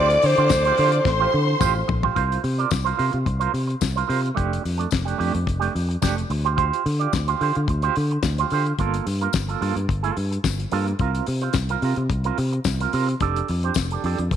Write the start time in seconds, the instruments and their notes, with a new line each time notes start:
Already playing: fingered electric bass D2, french horn section F3 C4 E4 A4, clean electric guitar F4 G4, alto saxophone D5, string section D5 D6
0.10 closed hi-hat
0.22 fingered electric bass D3, alto saxophone C5, muted clean electric guitar stroke, open hi-hat
0.37 fingered electric bass D3, clean electric guitar F4 G4 C5, closed hi-hat
0.49 fingered electric bass D2, muted clean electric guitar stroke, kick, snare, closed hi-hat, tambourine
0.65 clean electric guitar F4 G4 C5, closed hi-hat
0.78 fingered electric bass D3, clean electric guitar F4 G4 C5, open hi-hat
0.92 muted clean electric guitar stroke, closed hi-hat
1.05 fingered electric bass A1, string section C5 C6, muted clean electric guitar stroke, kick, snare
1.20 clean electric guitar F4 G4 C5
1.32 fingered electric bass D3, muted clean electric guitar stroke
1.47 muted clean electric guitar stroke
1.60 fingered electric bass A1, clean electric guitar F4 G4 C5, kick, mid tom, tambourine
1.88 fingered electric bass A#1, muted clean electric guitar stroke, floor tom
2.03 clean electric guitar F4 G4 C5, floor tom
2.15 fingered electric bass C2, clean electric guitar F4 A#4 C5, kick, closed hi-hat
2.32 closed hi-hat
2.43 fingered electric bass C3, muted clean electric guitar stroke, open hi-hat
2.58 clean electric guitar F4 A#4 D5, closed hi-hat
2.71 fingered electric bass C2, kick, snare, closed hi-hat, tambourine
2.85 clean electric guitar F4 A#4 C5, closed hi-hat
2.97 fingered electric bass C3, clean electric guitar F4 A#4 C5, open hi-hat
3.12 fingered electric bass C3, muted clean electric guitar stroke, closed hi-hat
3.26 fingered electric bass C2, muted clean electric guitar stroke, kick, closed hi-hat
3.40 clean electric guitar F4 A#4 C5, closed hi-hat
3.53 fingered electric bass C3, muted clean electric guitar stroke, open hi-hat
3.67 muted clean electric guitar stroke, closed hi-hat
3.81 fingered electric bass C2, muted clean electric guitar stroke, kick, snare, closed hi-hat, tambourine
3.96 clean electric guitar F4 A#4 C5, closed hi-hat
4.08 fingered electric bass C3, clean electric guitar F4 A#4 C5, open hi-hat
4.26 closed hi-hat
4.35 fingered electric bass F1, clean electric guitar A3 D4 G4, kick, closed hi-hat
4.53 closed hi-hat
4.63 fingered electric bass F2, muted clean electric guitar stroke, open hi-hat
4.78 clean electric guitar A3 D4 A4, closed hi-hat
4.90 fingered electric bass F1, muted clean electric guitar stroke, kick, snare, closed hi-hat, tambourine
5.05 clean electric guitar A3 D4 G4, closed hi-hat
5.18 fingered electric bass F2, clean electric guitar A3 D4 G4, open hi-hat
5.34 fingered electric bass F2, muted clean electric guitar stroke, closed hi-hat
5.46 fingered electric bass F1, muted clean electric guitar stroke, kick, closed hi-hat
5.60 clean electric guitar A3 D4 G4, closed hi-hat
5.74 fingered electric bass F2, muted clean electric guitar stroke, open hi-hat
5.89 muted clean electric guitar stroke, closed hi-hat
6.02 fingered electric bass F1, clean electric guitar A3 D4 G4, kick, snare, closed hi-hat, tambourine
6.18 closed hi-hat
6.30 fingered electric bass D2, muted clean electric guitar stroke, open hi-hat
6.44 clean electric guitar F4 G4 C5, closed hi-hat
6.56 clean electric guitar F4 G4 C5, kick, closed hi-hat
6.73 closed hi-hat
6.85 fingered electric bass D3, muted clean electric guitar stroke, open hi-hat
6.99 clean electric guitar F4 G4 D5, closed hi-hat
7.13 fingered electric bass D2, muted clean electric guitar stroke, kick, snare, closed hi-hat, tambourine
7.28 clean electric guitar F4 G4 C5, closed hi-hat
7.41 fingered electric bass D3, clean electric guitar F4 G4 C5, open hi-hat
7.55 fingered electric bass D3, muted clean electric guitar stroke, closed hi-hat
7.68 fingered electric bass D2, muted clean electric guitar stroke, kick, closed hi-hat
7.82 clean electric guitar F4 G4 C5, closed hi-hat
7.96 fingered electric bass D3, muted clean electric guitar stroke, open hi-hat
8.11 muted clean electric guitar stroke, closed hi-hat
8.23 fingered electric bass D2, muted clean electric guitar stroke, kick, snare, closed hi-hat, tambourine
8.38 clean electric guitar F4 G4 C5, closed hi-hat
8.50 fingered electric bass D3, clean electric guitar F4 G4 C5, open hi-hat
8.66 muted clean electric guitar stroke, closed hi-hat
8.79 fingered electric bass G1, clean electric guitar A#3 F4 A4, kick, closed hi-hat
8.94 closed hi-hat
9.06 fingered electric bass G2, muted clean electric guitar stroke, open hi-hat
9.21 clean electric guitar A#3 F4 A#4, closed hi-hat
9.33 fingered electric bass G1, kick, snare, closed hi-hat, tambourine
9.49 clean electric guitar A#3 F4 A4, closed hi-hat
9.61 fingered electric bass G2, clean electric guitar A#3 F4 A4, open hi-hat
9.76 fingered electric bass G2, muted clean electric guitar stroke, closed hi-hat
9.88 fingered electric bass G1, muted clean electric guitar stroke, kick, closed hi-hat
10.03 clean electric guitar A#3 F4 A4, closed hi-hat
10.17 fingered electric bass G2, muted clean electric guitar stroke, open hi-hat
10.32 muted clean electric guitar stroke, closed hi-hat
10.44 fingered electric bass G1, kick, snare, closed hi-hat, tambourine
10.59 muted clean electric guitar stroke, closed hi-hat
10.71 fingered electric bass G2, clean electric guitar A#3 F4 A4, open hi-hat
10.86 muted clean electric guitar stroke, closed hi-hat
10.99 fingered electric bass C2, clean electric guitar C4 F4 A#4, kick, closed hi-hat
11.15 closed hi-hat
11.27 fingered electric bass C3, muted clean electric guitar stroke, open hi-hat
11.41 clean electric guitar C4 F4 C5, closed hi-hat
11.53 fingered electric bass C2, muted clean electric guitar stroke, kick, snare, closed hi-hat, tambourine
11.69 clean electric guitar C4 F4 A#4, closed hi-hat
11.82 fingered electric bass C3, clean electric guitar C4 F4 A#4, open hi-hat
11.96 fingered electric bass C3, muted clean electric guitar stroke, closed hi-hat
12.10 fingered electric bass C2, muted clean electric guitar stroke, kick, closed hi-hat
12.24 clean electric guitar C4 F4 A#4, closed hi-hat
12.38 fingered electric bass C3, muted clean electric guitar stroke, open hi-hat
12.52 muted clean electric guitar stroke, closed hi-hat
12.64 fingered electric bass C2, muted clean electric guitar stroke, kick, snare, closed hi-hat, tambourine
12.80 clean electric guitar C4 F4 A#4, closed hi-hat
12.93 fingered electric bass C3, clean electric guitar C4 F4 A#4, open hi-hat
13.08 muted clean electric guitar stroke, closed hi-hat
13.20 fingered electric bass F1, clean electric guitar D4 G4 A4, kick, closed hi-hat
13.36 closed hi-hat
13.48 fingered electric bass F2, muted clean electric guitar stroke, open hi-hat
13.63 clean electric guitar D4 G4 C5, closed hi-hat
13.74 fingered electric bass F1, kick, snare, closed hi-hat, tambourine
13.91 clean electric guitar D4 G4 A4, closed hi-hat
14.04 fingered electric bass F2, clean electric guitar D4 G4 A4, open hi-hat
14.18 fingered electric bass F2, muted clean electric guitar stroke, closed hi-hat
14.31 fingered electric bass F1, muted clean electric guitar stroke, kick, closed hi-hat